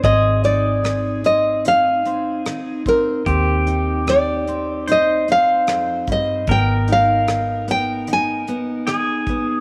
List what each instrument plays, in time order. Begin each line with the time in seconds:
Already playing: steel-string acoustic guitar D#4, pedal steel guitar G#4
0.03 fingered electric bass G#1, steel-string acoustic guitar G#2 C4, pedal steel guitar G#4, nylon-string guitar D#5, kick, closed hi-hat
0.44 steel-string acoustic guitar D#4, nylon-string guitar D5, closed hi-hat
0.83 steel-string acoustic guitar D#3, cross-stick, closed hi-hat
1.24 steel-string acoustic guitar C4, nylon-string guitar D#5, closed hi-hat
1.65 steel-string acoustic guitar D#3 D#4, nylon-string guitar F5, closed hi-hat
2.05 steel-string acoustic guitar C4, closed hi-hat
2.46 steel-string acoustic guitar D#3 D#4, cross-stick, closed hi-hat
2.86 steel-string acoustic guitar C4, nylon-string guitar A#4, kick, closed hi-hat
3.26 steel-string acoustic guitar D#2 C4, fingered electric bass D#2, pedal steel guitar G4, kick, closed hi-hat
3.67 steel-string acoustic guitar D#4, closed hi-hat
4.06 steel-string acoustic guitar D#3, nylon-string guitar D5, cross-stick, closed hi-hat
4.47 steel-string acoustic guitar C4, closed hi-hat
4.87 steel-string acoustic guitar A#2 D#4, pedal steel guitar C5, closed hi-hat
4.92 nylon-string guitar D#5
5.28 steel-string acoustic guitar C4, nylon-string guitar F5, closed hi-hat
5.67 steel-string acoustic guitar F2, cross-stick, closed hi-hat
6.07 steel-string acoustic guitar G2, kick, closed hi-hat
6.12 nylon-string guitar D#5
6.47 fingered electric bass G#1, steel-string acoustic guitar G#2 B3, pedal steel guitar A#4, kick, closed hi-hat
6.51 nylon-string guitar G5
6.88 steel-string acoustic guitar D#4, closed hi-hat
6.92 nylon-string guitar F5
7.27 steel-string acoustic guitar D#3, cross-stick, closed hi-hat
7.68 steel-string acoustic guitar B3, nylon-string guitar G5, closed hi-hat
8.07 steel-string acoustic guitar D#3 D#4, closed hi-hat
8.13 nylon-string guitar G#5
8.47 steel-string acoustic guitar B3, closed hi-hat
8.87 steel-string acoustic guitar D#3 D#4, pedal steel guitar G#4, cross-stick, closed hi-hat
9.27 steel-string acoustic guitar B3, kick, closed hi-hat